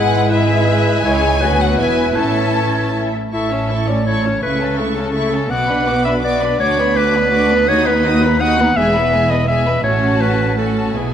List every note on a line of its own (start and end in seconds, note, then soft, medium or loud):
0.00 1.04 G#1 medium
0.00 1.04 G#2 medium
0.00 0.31 G#3 medium
0.00 1.00 G#3 medium
0.00 0.30 E4 medium
0.00 0.31 E4 soft
0.00 1.00 E4 soft
0.00 0.31 G#4 medium
0.00 0.30 B4 medium
0.00 0.31 B4 medium
0.00 0.31 F#5 medium
0.31 1.03 G#3 medium
0.31 1.02 E4 medium
0.31 1.03 E4 medium
0.31 1.03 G#4 medium
0.31 1.02 B4 medium
0.31 1.03 B4 medium
0.31 1.03 E5 medium
1.04 1.41 C#2 soft
1.04 1.41 C#2 medium
1.04 1.41 G#3 medium
1.04 1.44 G#3 medium
1.04 1.39 G#3 medium
1.04 1.41 E4 medium
1.04 1.42 E4 medium
1.04 1.39 E4 medium
1.04 1.41 G#4 medium
1.04 1.43 C#5 medium
1.04 1.42 C#5 medium
1.04 1.60 G#5 medium
1.41 1.79 D2 medium
1.41 1.80 F#3 medium
1.41 1.78 B3 soft
1.41 2.14 B3 medium
1.41 1.81 D4 soft
1.41 1.79 F#4 soft
1.41 1.78 F#4 medium
1.41 1.77 F#4 medium
1.41 1.78 B4 medium
1.41 1.78 B4 soft
1.61 1.79 F#5 medium
1.78 2.17 E1 soft
1.78 2.17 E2 soft
1.78 2.16 E3 soft
1.78 2.16 B3 soft
1.78 2.15 E4 soft
1.78 3.10 E4 medium
1.78 2.16 E4 soft
1.78 2.17 B4 medium
1.78 2.17 B4 soft
1.78 2.16 E5 soft
1.78 2.16 G#5 medium
2.16 3.13 A1 soft
2.16 3.13 A2 soft
2.16 3.11 E3 soft
2.16 3.13 C#4 soft
2.16 3.10 C#4 soft
2.16 3.11 E4 soft
2.16 3.13 A4 soft
2.16 3.13 C#5 soft
2.16 3.11 E5 soft
2.16 2.93 A5 medium
3.32 4.38 A1 soft
3.32 4.38 A2 soft
3.32 3.50 E4 soft
3.32 3.50 A4 soft
3.32 3.89 E5 medium
3.32 3.50 C#6 soft
3.51 3.70 C#4 soft
3.51 3.70 C#5 soft
3.51 3.70 A5 soft
3.69 3.88 E4 soft
3.69 3.88 A4 soft
3.69 3.88 C#6 soft
3.88 4.06 C#4 soft
3.88 4.06 C#5 soft
3.88 4.06 D5 medium
3.88 4.07 A5 soft
4.06 4.23 E4 soft
4.06 4.23 A4 soft
4.06 4.41 C#5 medium
4.06 4.23 C#6 soft
4.24 4.42 C#4 soft
4.24 4.42 C#5 soft
4.24 4.42 A5 soft
4.42 5.50 C#2 soft
4.42 5.51 C#3 medium
4.42 4.59 A3 soft
4.42 4.59 E4 soft
4.42 4.78 B4 medium
4.42 4.59 C#6 soft
4.60 4.79 C#4 soft
4.60 4.78 A4 soft
4.60 4.78 A5 soft
4.78 4.97 A3 soft
4.78 4.96 E4 soft
4.78 5.52 A4 medium
4.78 4.96 C#6 soft
4.96 5.14 C#4 soft
4.96 5.14 A4 soft
4.96 5.14 A5 soft
5.14 5.31 A3 soft
5.14 5.31 E4 soft
5.14 5.31 C#6 soft
5.32 5.51 C#4 soft
5.32 5.51 A4 soft
5.32 5.50 A5 soft
5.50 6.61 B1 medium
5.50 6.60 B2 medium
5.50 5.68 B3 medium
5.50 5.68 F#4 medium
5.50 6.04 F#5 medium
5.50 5.68 D6 medium
5.68 5.88 D4 medium
5.68 5.87 B4 soft
5.68 5.87 B5 soft
5.87 6.06 B3 medium
5.87 6.06 F#4 soft
5.87 6.05 D6 medium
6.05 6.24 D4 soft
6.05 6.24 B4 soft
6.05 6.13 E5 medium
6.05 6.24 B5 medium
6.23 6.41 B3 soft
6.23 6.41 F#4 soft
6.23 6.59 D5 medium
6.23 6.41 D6 medium
6.41 6.59 D4 soft
6.41 6.60 B4 soft
6.41 6.60 B5 medium
6.60 7.67 D2 medium
6.60 6.77 D4 medium
6.60 6.77 F#4 medium
6.60 6.98 C#5 medium
6.60 6.77 D6 medium
6.78 6.97 B3 medium
6.78 6.97 D4 medium
6.78 6.97 B5 medium
6.96 7.15 D4 medium
6.96 7.15 F#4 medium
6.96 7.70 B4 medium
6.96 7.14 D6 medium
7.14 7.33 B3 medium
7.14 7.33 D4 medium
7.14 7.32 B5 medium
7.31 7.49 D4 medium
7.31 7.49 F#4 medium
7.31 7.49 D6 medium
7.50 7.69 B3 medium
7.50 7.69 D4 medium
7.50 7.68 B5 medium
7.67 8.77 D#2 medium
7.67 7.86 D#4 medium
7.67 7.86 F#4 medium
7.67 7.88 C#5 loud
7.67 7.85 D#6 medium
7.86 8.05 B3 medium
7.86 8.05 D#4 medium
7.86 8.42 B4 medium
7.86 8.04 B5 medium
8.04 8.23 D#4 medium
8.04 8.24 F#4 medium
8.04 8.23 D#6 medium
8.22 8.41 B3 medium
8.22 8.41 D#4 medium
8.22 8.41 B5 medium
8.40 8.58 D#4 medium
8.40 8.58 F#4 medium
8.40 8.78 F#5 medium
8.40 8.57 D#6 medium
8.58 8.77 B3 soft
8.58 8.77 D#4 medium
8.58 8.76 B5 medium
8.77 9.82 E1 medium
8.77 9.82 E2 medium
8.77 8.94 G#3 medium
8.77 8.94 G#4 medium
8.77 9.32 E5 loud
8.77 8.94 G#5 medium
8.94 9.13 B3 soft
8.94 9.13 B4 medium
8.94 9.12 B5 medium
9.12 9.31 G#3 medium
9.12 9.31 G#4 soft
9.12 9.31 G#5 medium
9.30 9.48 B3 soft
9.30 9.49 B4 soft
9.30 9.48 D#5 medium
9.30 9.49 B5 medium
9.48 9.65 G#3 soft
9.48 9.65 G#4 medium
9.48 9.83 E5 medium
9.48 9.65 G#5 medium
9.66 9.84 B3 soft
9.66 9.85 B4 soft
9.66 9.85 B5 soft
9.84 10.92 A1 medium
9.84 10.92 A2 medium
9.84 10.54 C#4 medium
9.84 10.54 F#4 medium
9.84 10.22 C#5 medium
9.84 10.55 A5 medium
10.21 10.57 B4 medium
10.58 10.95 C#4 soft
10.58 10.95 F#4 soft
10.58 10.98 A4 medium
10.58 10.96 A5 soft
10.96 11.14 B1 soft
10.96 11.14 B2 soft
10.96 11.14 B3 soft
10.96 11.14 E4 soft
10.96 11.14 G#4 medium
10.96 11.14 G#5 soft